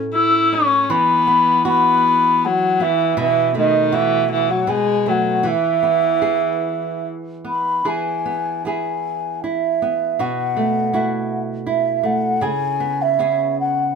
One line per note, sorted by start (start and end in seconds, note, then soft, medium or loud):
0.00 0.90 A2 medium
0.00 0.51 C#4 soft
0.00 0.98 A4 soft
0.13 0.55 E4 medium
0.13 0.54 E6 medium
0.52 0.98 C#4 soft
0.52 0.83 C#4 medium
0.52 0.82 C#6 medium
0.82 0.93 C#4 medium
0.82 0.92 C#6 medium
0.90 3.17 E3 medium
0.90 1.67 B3 medium
0.90 1.66 B5 loud
1.27 2.80 B3 medium
1.65 2.47 B3 medium
1.65 3.92 F#4 medium
1.65 2.46 B5 medium
2.45 2.84 F#3 medium
2.45 2.83 F#5 medium
2.80 3.19 E3 medium
2.80 3.54 B3 medium
2.80 3.19 E5 medium
3.17 4.66 B2 medium
3.17 3.54 E3 medium
3.17 3.54 E5 loud
3.54 3.96 D#3 medium
3.54 4.76 A3 medium
3.54 3.95 D#5 medium
3.92 4.31 E3 medium
3.92 4.76 F#4 medium
3.92 4.30 E5 medium
4.32 4.51 E3 medium
4.32 4.52 E5 medium
4.50 4.70 F#3 medium
4.50 4.71 F#5 medium
4.67 5.52 B2 medium
4.67 5.10 G#3 medium
4.67 5.11 G#5 medium
5.06 5.48 F#3 medium
5.06 5.52 A3 medium
5.06 5.49 F#5 medium
5.43 7.84 E3 medium
5.43 7.05 E3 medium
5.48 7.06 E5 loud
5.83 7.44 B3 medium
6.22 7.85 G#4 medium
7.45 8.25 B3 soft
7.45 7.89 B5 medium
7.85 10.23 E3 medium
7.85 8.65 G#4 soft
7.85 8.66 G#5 medium
8.25 8.65 B3 soft
8.65 9.82 B3 soft
8.65 9.43 E4 soft
8.65 10.19 G#4 soft
8.65 9.40 G#5 medium
9.44 10.93 E4 soft
9.44 10.21 E5 medium
9.82 10.56 B3 medium
10.19 12.41 B2 medium
10.19 10.93 F#4 medium
10.19 11.42 F#5 loud
10.56 10.92 A3 soft
10.93 12.02 A3 soft
10.93 11.66 E4 medium
10.93 12.42 F#4 soft
11.66 13.19 E4 medium
11.66 12.07 E5 medium
12.03 12.49 A3 medium
12.03 12.44 F#5 medium
12.41 13.95 C#3 medium
12.41 13.18 G#4 medium
12.41 13.03 G#5 loud
12.80 13.18 B3 medium
13.02 13.58 E5 medium
13.19 13.95 B3 medium
13.19 13.95 C#4 medium
13.19 13.95 G#4 medium
13.60 13.95 F#5 medium